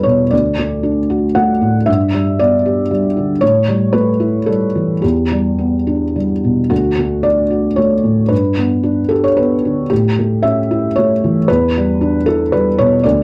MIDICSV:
0, 0, Header, 1, 2, 480
1, 0, Start_track
1, 0, Key_signature, 2, "major"
1, 0, Tempo, 517688
1, 300, Time_signature, 3, 2, 24, 8
1, 3658, Tempo, 551978
1, 6058, Tempo, 536673
1, 7498, Tempo, 524017
1, 12003, End_track
2, 0, Start_track
2, 0, Title_t, "Felt piano"
2, 0, Program_c, 0, 0
2, 0, Control_c, 0, 64, 127
2, 0, Note_on_c, 0, 40, 39
2, 0, Note_on_c, 0, 55, 33
2, 0, Note_on_c, 0, 62, 36
2, 0, Note_on_c, 0, 64, 35
2, 0, Note_on_c, 0, 69, 58
2, 0, Note_on_c, 0, 71, 65
2, 31, Note_on_c, 0, 73, 67
2, 51, Note_on_c, 0, 47, 38
2, 195, Note_off_c, 0, 55, 0
2, 255, Note_off_c, 0, 40, 0
2, 283, Note_on_c, 0, 74, 61
2, 287, Note_off_c, 0, 73, 0
2, 297, Note_off_c, 0, 47, 0
2, 300, Note_on_c, 0, 38, 42
2, 315, Control_c, 0, 64, 0
2, 317, Note_off_c, 0, 69, 0
2, 318, Note_off_c, 0, 62, 0
2, 318, Note_off_c, 0, 64, 0
2, 321, Note_off_c, 0, 71, 0
2, 482, Control_c, 0, 64, 127
2, 542, Note_on_c, 0, 57, 36
2, 772, Note_on_c, 0, 62, 39
2, 924, Note_off_c, 0, 57, 0
2, 1019, Note_on_c, 0, 66, 41
2, 1158, Note_off_c, 0, 62, 0
2, 1249, Note_off_c, 0, 74, 0
2, 1251, Note_on_c, 0, 78, 70
2, 1260, Note_on_c, 0, 57, 38
2, 1402, Note_off_c, 0, 66, 0
2, 1498, Note_on_c, 0, 45, 40
2, 1642, Note_off_c, 0, 57, 0
2, 1699, Note_off_c, 0, 38, 0
2, 1724, Note_on_c, 0, 76, 68
2, 1733, Note_off_c, 0, 78, 0
2, 1736, Note_off_c, 0, 45, 0
2, 1737, Note_on_c, 0, 43, 49
2, 1755, Control_c, 0, 64, 0
2, 1920, Control_c, 0, 64, 127
2, 1978, Note_on_c, 0, 55, 36
2, 2206, Note_off_c, 0, 76, 0
2, 2220, Note_on_c, 0, 74, 74
2, 2224, Note_on_c, 0, 59, 44
2, 2356, Note_off_c, 0, 55, 0
2, 2462, Note_on_c, 0, 67, 41
2, 2599, Note_off_c, 0, 59, 0
2, 2693, Note_off_c, 0, 74, 0
2, 2697, Note_on_c, 0, 55, 35
2, 2839, Note_off_c, 0, 67, 0
2, 2937, Note_on_c, 0, 50, 37
2, 3078, Note_off_c, 0, 55, 0
2, 3133, Note_off_c, 0, 43, 0
2, 3161, Note_on_c, 0, 73, 77
2, 3174, Note_off_c, 0, 50, 0
2, 3175, Note_on_c, 0, 45, 44
2, 3185, Control_c, 0, 64, 0
2, 3350, Control_c, 0, 64, 127
2, 3412, Note_on_c, 0, 55, 36
2, 3641, Note_on_c, 0, 71, 73
2, 3650, Note_on_c, 0, 57, 40
2, 3653, Note_off_c, 0, 73, 0
2, 3797, Note_off_c, 0, 55, 0
2, 3879, Note_on_c, 0, 64, 39
2, 4029, Note_off_c, 0, 57, 0
2, 4108, Note_on_c, 0, 69, 55
2, 4119, Note_off_c, 0, 71, 0
2, 4122, Note_on_c, 0, 55, 31
2, 4262, Note_off_c, 0, 64, 0
2, 4361, Note_on_c, 0, 52, 32
2, 4503, Note_off_c, 0, 55, 0
2, 4569, Note_off_c, 0, 45, 0
2, 4591, Note_on_c, 0, 67, 53
2, 4592, Note_off_c, 0, 69, 0
2, 4601, Note_off_c, 0, 52, 0
2, 4606, Note_on_c, 0, 40, 42
2, 4616, Control_c, 0, 64, 0
2, 4783, Control_c, 0, 64, 127
2, 4850, Note_on_c, 0, 55, 32
2, 5084, Note_on_c, 0, 59, 34
2, 5238, Note_off_c, 0, 55, 0
2, 5331, Note_on_c, 0, 62, 33
2, 5476, Note_off_c, 0, 59, 0
2, 5570, Note_off_c, 0, 67, 0
2, 5583, Note_on_c, 0, 55, 26
2, 5720, Note_off_c, 0, 62, 0
2, 5832, Note_on_c, 0, 47, 28
2, 5967, Note_off_c, 0, 55, 0
2, 6025, Note_off_c, 0, 40, 0
2, 6052, Note_on_c, 0, 66, 57
2, 6064, Note_on_c, 0, 38, 43
2, 6065, Note_off_c, 0, 47, 0
2, 6076, Control_c, 0, 64, 0
2, 6229, Control_c, 0, 64, 127
2, 6307, Note_on_c, 0, 57, 34
2, 6529, Note_on_c, 0, 74, 69
2, 6536, Note_off_c, 0, 66, 0
2, 6542, Note_on_c, 0, 62, 38
2, 6687, Note_off_c, 0, 57, 0
2, 6774, Note_on_c, 0, 66, 38
2, 6925, Note_off_c, 0, 62, 0
2, 7003, Note_on_c, 0, 73, 64
2, 7014, Note_off_c, 0, 74, 0
2, 7020, Note_on_c, 0, 57, 35
2, 7160, Note_off_c, 0, 66, 0
2, 7249, Note_on_c, 0, 45, 34
2, 7402, Note_off_c, 0, 57, 0
2, 7465, Note_off_c, 0, 38, 0
2, 7471, Note_on_c, 0, 71, 58
2, 7481, Note_on_c, 0, 43, 44
2, 7489, Note_off_c, 0, 73, 0
2, 7493, Note_off_c, 0, 45, 0
2, 7513, Control_c, 0, 64, 0
2, 7682, Control_c, 0, 64, 127
2, 7736, Note_on_c, 0, 59, 36
2, 7974, Note_on_c, 0, 62, 42
2, 8129, Note_off_c, 0, 59, 0
2, 8204, Note_on_c, 0, 69, 66
2, 8217, Note_off_c, 0, 71, 0
2, 8225, Note_on_c, 0, 67, 40
2, 8340, Note_off_c, 0, 69, 0
2, 8344, Note_on_c, 0, 73, 67
2, 8371, Note_off_c, 0, 62, 0
2, 8462, Note_on_c, 0, 71, 62
2, 8470, Note_off_c, 0, 73, 0
2, 8480, Note_on_c, 0, 59, 33
2, 8617, Note_off_c, 0, 67, 0
2, 8721, Note_on_c, 0, 50, 39
2, 8864, Note_off_c, 0, 59, 0
2, 8912, Note_off_c, 0, 43, 0
2, 8947, Note_on_c, 0, 67, 67
2, 8951, Note_off_c, 0, 71, 0
2, 8960, Note_off_c, 0, 50, 0
2, 8965, Note_on_c, 0, 45, 46
2, 8975, Control_c, 0, 64, 0
2, 9100, Control_c, 0, 64, 127
2, 9215, Note_on_c, 0, 57, 38
2, 9431, Note_off_c, 0, 67, 0
2, 9431, Note_on_c, 0, 76, 76
2, 9446, Note_on_c, 0, 61, 43
2, 9589, Note_off_c, 0, 57, 0
2, 9692, Note_on_c, 0, 64, 45
2, 9826, Note_off_c, 0, 61, 0
2, 9915, Note_off_c, 0, 76, 0
2, 9918, Note_on_c, 0, 73, 74
2, 9941, Note_on_c, 0, 57, 37
2, 10068, Note_off_c, 0, 64, 0
2, 10178, Note_on_c, 0, 52, 42
2, 10310, Note_off_c, 0, 57, 0
2, 10360, Note_off_c, 0, 45, 0
2, 10393, Note_off_c, 0, 73, 0
2, 10398, Note_on_c, 0, 71, 85
2, 10404, Note_off_c, 0, 52, 0
2, 10411, Control_c, 0, 64, 0
2, 10420, Note_on_c, 0, 40, 50
2, 10568, Control_c, 0, 64, 127
2, 10665, Note_on_c, 0, 55, 40
2, 10883, Note_on_c, 0, 62, 50
2, 11025, Note_off_c, 0, 55, 0
2, 11104, Note_off_c, 0, 71, 0
2, 11112, Note_on_c, 0, 69, 80
2, 11128, Note_on_c, 0, 64, 46
2, 11253, Note_off_c, 0, 62, 0
2, 11346, Note_off_c, 0, 69, 0
2, 11352, Note_on_c, 0, 71, 80
2, 11363, Note_on_c, 0, 55, 43
2, 11498, Note_off_c, 0, 64, 0
2, 11587, Note_off_c, 0, 71, 0
2, 11592, Note_on_c, 0, 73, 82
2, 11602, Note_on_c, 0, 47, 44
2, 11737, Note_off_c, 0, 55, 0
2, 11798, Note_off_c, 0, 40, 0
2, 11822, Note_on_c, 0, 74, 74
2, 11826, Note_off_c, 0, 73, 0
2, 11831, Note_off_c, 0, 47, 0
2, 11838, Control_c, 0, 64, 0
2, 11840, Note_on_c, 0, 38, 58
2, 11979, Control_c, 0, 64, 127
2, 12003, Note_off_c, 0, 38, 0
2, 12003, Note_off_c, 0, 74, 0
2, 12003, End_track
0, 0, End_of_file